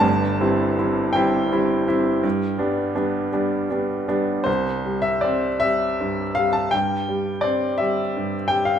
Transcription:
<<
  \new Staff \with { instrumentName = "Grand piano" } { \time 12/8 \key g \mixolydian \tempo 4. = 55 a''4. g''1 r8 | c''8. e''16 d''8 e''4 f''16 a''16 g''4 d''8 e''4 g''16 f''16 | }
  \new Staff \with { instrumentName = "Grand piano" } { \clef bass \time 12/8 \key g \mixolydian <g,, g,>8 <g c' e'>8 <g c' e'>8 <g c' e'>8 <g c' e'>8 <g c' e'>8 g,8 <g b d'>8 <g b d'>8 <g b d'>8 <g b d'>8 <g b d'>8 | c,8 g8 c'8 g8 g,8 g8 g,8 g8 c'8 g8 g,8 g8 | }
>>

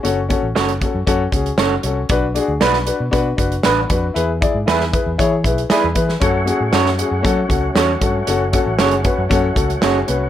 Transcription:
<<
  \new Staff \with { instrumentName = "Clean electric guitar" } { \time 4/4 \key fis \minor \tempo 4 = 116 r4 <cis' fis' a' cis''>8 r4. <cis' fis' a' cis''>8 r8 | r4 <b d' fis' b'>8 r4. <b d' fis' b'>8 r8 | r4 <b e' gis' b'>8 r4. <b e' gis' b'>8 r8 | r4 <cis' fis' a' cis''>8 r4. <cis' fis' a' cis''>8 r8 |
r4 <cis' fis' a' cis''>8 r4. <cis' fis' a' cis''>8 r8 | }
  \new Staff \with { instrumentName = "Upright piano" } { \time 4/4 \key fis \minor <cis' fis' a'>8 <cis' fis' a'>8 <cis' fis' a'>8 <cis' fis' a'>8 <cis' fis' a'>8 <cis' fis' gis'>8 <cis' fis' a'>8 <cis' fis' a'>8 | <d' fis' b'>8 <d' fis' gis'>8 <d' fis' b'>8 <d' fis' b'>8 <d' fis' b'>8 <d' fis' b'>8 <d' fis' b'>8 <d' fis' b'>8 | <e' gis' b'>8 <e' gis' d''>8 <e' gis' b'>8 <e' gis' b'>8 <e' gis' cis''>8 <e' gis' b'>8 <e' gis' d''>8 <e' gis' b'>8 | <cis' fis' a'>8 <cis' fis' gis'>8 <cis' fis' a'>8 <cis' fis' gis'>8 <cis' fis' a'>8 <cis' fis' a'>8 <cis' fis' a'>8 <cis' fis' a'>8 |
<cis' fis' a'>8 <cis' fis' a'>8 <cis' fis' gis'>8 <cis' fis' b'>8 <cis' fis' a'>8 <cis' fis' a'>8 <cis' fis' gis'>8 <cis' fis' b'>8 | }
  \new Staff \with { instrumentName = "Tonewheel organ" } { \time 4/4 \key fis \minor r1 | r1 | r1 | <fis a cis' fis'>1~ |
<fis a cis' fis'>1 | }
  \new Staff \with { instrumentName = "Fingered electric bass" } { \clef bass \time 4/4 \key fis \minor fis,,8. a,,16 fis,,8. fis,16 fis,8 cis,8 fis,,8 bis,,8 | b,,8. d,16 b,,8. b,16 b,8 fis,,8 a,,8 eis,8 | e,8. gis,16 e,8. e,16 e8 b,,8 r16 e,16 e8 | fis,8. a,16 fis,8. fis,16 fis8 cis,8 e,8 g,8 |
fis,,8. a,,16 fis,,8. fis,16 fis,8 cis,8 fis,,8 bis,,8 | }
  \new DrumStaff \with { instrumentName = "Drums" } \drummode { \time 4/4 hh8 <hh bd>8 <hh sn>16 hh16 <hh bd>8 <hh bd>8 <hh bd>16 hh16 <hh sn>8 hh8 | <hh bd>8 hh8 <hh sn>16 sn16 hh8 <hh bd>8 <hh bd>16 hh16 <hh sn>8 <hh bd>8 | hh8 <hh bd>8 <hh sn>16 sn16 <hh bd>8 <hh bd>8 <hh bd>16 hh16 <hh sn>8 <hh bd>16 sn16 | <hh bd>8 hh8 <hh sn>16 sn16 hh8 <hh bd>8 <hh bd>8 <hh sn>8 <hh bd>8 |
hh8 <hh bd>8 <hh sn>16 hh16 <hh bd>8 <hh bd>8 <hh bd>16 hh16 <hh sn>8 hh8 | }
>>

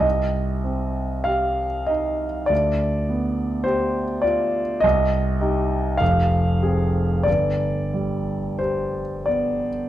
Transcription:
\new Staff \with { instrumentName = "Grand piano" } { \time 4/4 \key c \minor \tempo 4 = 49 << { ees''4 f''8 ees''8 d''4 c''8 d''8 | ees''4 f''4 d''4 c''8 d''8 | } \\ { c,8 c'8 g'8 ees'8 d,8 b8 g'8 f'8 | c,8 <ees' g'>8 f,,8 <c' aes'>8 g,,8 g8 g'8 b8 | } >> }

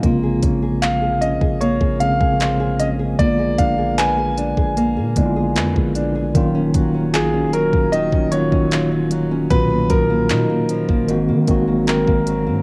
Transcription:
<<
  \new Staff \with { instrumentName = "Grand piano" } { \time 4/4 \key bes \minor \tempo 4 = 76 r4 f''8 ees''8 des''8 f''4 ees''8 | d''8 f''8 aes''2~ aes''8 r8 | r4 aes'8 bes'8 ees''8 des''4 r8 | b'8 ais'2~ ais'8 bes'4 | }
  \new Staff \with { instrumentName = "Nylon-string guitar" } { \time 4/4 \key bes \minor bes16 aes'16 des'16 aes'8 aes'16 des'16 aes'16 bes16 aes'16 des'16 aes'16 c''16 aes'16 des'16 aes'16 | bes16 aes'16 d'16 aes'16 ces''16 aes'16 d'16 aes'16 bes16 aes'16 d'16 aes'16 ces''16 aes'16 d'16 aes'16 | ees16 des'16 ges16 des'16 f'16 des'16 ges16 des'16 ees16 des'16 ges16 des'16 f'16 des'16 ges16 des'16 | b,16 ais16 eis16 ais16 dis'16 ais16 eis16 ais16 aes,16 bes16 ges16 bes16 c'16 bes16 ges16 bes16 | }
  \new Staff \with { instrumentName = "Tine electric piano" } { \time 4/4 \key bes \minor <c des aes bes c' f'>4. r4 <des aes bes c' aes'>4 r8 | <d aes bes ces' f'>4. r4 <d aes bes ces' e' f'>4 r8 | <ees ges bes des' f'>4. r4 <ees ges bes des' f'>4 r8 | <ais, dis fis cis' eis'>4. r8 <ees aes bes c' ges'>8 <ees aes bes c' ges'>4 r8 | }
  \new Staff \with { instrumentName = "808-style bass" } { \clef bass \time 4/4 \key bes \minor bes,,8 bes,,4~ bes,,16 bes,,8 bes,,8 bes,,4~ bes,,16 | bes,,8 bes,,4~ bes,,16 bes,,8 bes,16 bes,,8 f,16 bes,,8. | ees,,8 ees,,8 bes,,16. ees,,16. ees,,8 ees,,8 ees,,4~ ees,,16 | b,,8 b,,8 b,16 r8 aes,,8 ees16 aes,,8. aes,,8 aes,16 | }
  \new DrumStaff \with { instrumentName = "Drums" } \drummode { \time 4/4 <hh bd>8 <hh bd>8 <hc hh>8 hh16 bd16 hh16 bd16 hh16 bd16 <hc hh>8 hh8 | <hh bd>8 <hh bd>8 <hc hh>8 hh16 bd16 hh8 <hh bd>8 <hc hh>16 bd16 hh8 | <hh bd>8 <hh bd>8 <hc hh>8 hh16 bd16 hh16 bd16 hh16 bd16 <hc hh>8 hh8 | <hh bd>8 <hh bd>8 <hc hh>8 hh16 bd16 hh8 <hh bd>8 <hc hh>16 bd16 hh8 | }
>>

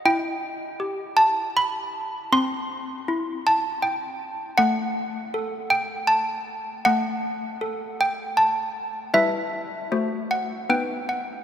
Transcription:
\new Staff \with { instrumentName = "Handbells" } { \time 3/4 \key e \minor \tempo 4 = 79 << { g''4. a''8 b''4 | c'''4. a''8 g''4 | fis''4. g''8 a''4 | fis''4. g''8 a''4 |
e''4. fis''8 g''8 fis''8 | } \\ { e'4 g'2 | c'4 e'2 | a4 a'2 | a4 a'2 |
<g e' b'>4 <a fis' c''>4 <b dis' b'>4 | } >> }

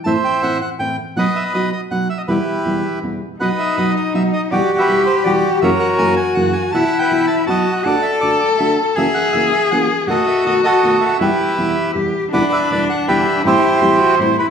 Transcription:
<<
  \new Staff \with { instrumentName = "Bandoneon" } { \time 3/4 \key e \minor \tempo 4 = 162 << { a''8 g''8 fis''8 fis''8 g''8 r8 | fis''8 e''8 dis''8 dis''8 fis''8 e''16 dis''16 | b'2 r4 | fis''8 e''8 dis''8 dis''8 e''8 dis''8 |
d''8. e''8. c''8 d''8. r16 | e''8 fis''8 gis''8 gis''8 fis''8 gis''8 | a''8. g''8. a''8 a''8. r16 | fis''8 e''8 d''8 d''8 e''8 r8 |
gis''8 fis''8 e''8 e''8 fis''8 r8 | fis''8 e''8 dis''8 dis''4 e''8 | e''2 r4 | fis''8 e''8 d''8 fis''8 e''4 |
c''2 c''8 b'8 | } \\ { <c'' e''>4. r4. | <b' dis''>4. r4. | <e' g'>2 r4 | <b' dis''>4. r4. |
<fis' g'>8. <g' b'>4~ <g' b'>16 <fis' g'>4 | <ais' cis''>4. r4. | <e'' fis''>8. <b' e''>4~ <b' e''>16 <dis'' fis''>4 | <a' d''>4. r4. |
e''4. r4. | <a' dis''>4. <fis' a'>4. | <g' b'>2 r4 | <b' d''>4. r8 <g' b'>4 |
<e' g'>2 r4 | } >> }
  \new Staff \with { instrumentName = "Cello" } { \time 3/4 \key e \minor r2. | r2. | r2. | dis'2. |
g'2. | fis'2. | e'2 fis'4 | a'2. |
gis'2. | fis'2. | e'2 g'4 | d'2. |
e'4 g'8 fis'8 e'4 | }
  \new Staff \with { instrumentName = "Nylon-string guitar" } { \clef bass \time 3/4 \key e \minor <a, e a c' e'>16 r8. <a, e a c' e'>8 r8 <a, e a c' e'>8 r8 | <b, fis b dis' fis'>16 r8. <b, fis b dis' fis'>8 r8 <b, fis b dis' fis'>8 r8 | <e, b, e g b e'>16 r8. <e, b, e g b e'>8 r8 <e, b, e g b e'>8 r8 | <b, fis b dis' fis'>16 r8. <b, fis b dis' fis'>8 r8 <b, fis b dis' fis'>8 r8 |
<e, b, e g b fis'>16 r8. <e, b, e g b fis'>8 r8 <e, b, e g b fis'>8 r8 | <fis, cis e ais cis' fis'>16 r8. <fis, cis e ais cis' fis'>8 r8 <fis, cis e ais cis' fis'>8 r8 | <b, e b e' fis'>16 r8. <b, e b e' fis'>8 r8 <b, fis b dis' fis'>8 r8 | <d a d' fis'>16 r8. <d a d' fis'>8 r8 <d a d' fis'>8 r8 |
<cis e ais cis' fis'>16 r8. <cis e ais cis' fis'>8 r8 <cis e ais cis' fis'>8 r8 | <b, dis a b fis'>16 r8. <b, dis a b fis'>8 r8 <b, dis a b fis'>8 r8 | <e, b, e g b e'>16 r8. <e, b, e g b e'>8 r8 <e, b, e g b e'>8 r8 | <e, b, d g b e'>16 r8. <e, b, d g b e'>8 r8 <e, b, d g b e'>8 r8 |
<a, e g c' e'>16 r8. <a, e g c' e'>8 r8 <a, e g c' e'>8 r8 | }
>>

